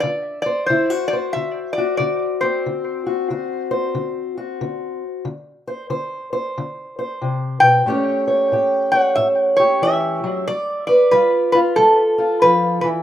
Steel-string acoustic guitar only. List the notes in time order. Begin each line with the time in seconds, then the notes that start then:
Already playing: D4
0.03 D3
0.46 C5
0.70 D3 E4
0.90 F#4
1.13 C5
1.36 D3
1.78 F#4
2.00 D3
2.43 C4
2.66 D3
3.06 F#4
3.30 D3 F#4
3.71 C5
3.95 D3
4.37 F#4
4.61 D3
5.25 D3
5.67 C5
5.90 D3 C5
6.33 C5
6.58 D3
6.99 C5
7.22 C3
7.61 B2
7.86 A2 A3 C#4 G4 C#5
8.28 C#5
8.52 A2 G4
8.93 C#5
9.17 A2
9.60 G4
9.82 E3
10.24 F#3
10.48 G3
10.89 B4
11.13 G3 F4
11.55 F4
11.78 G3
12.18 F4
12.43 F3
12.84 E3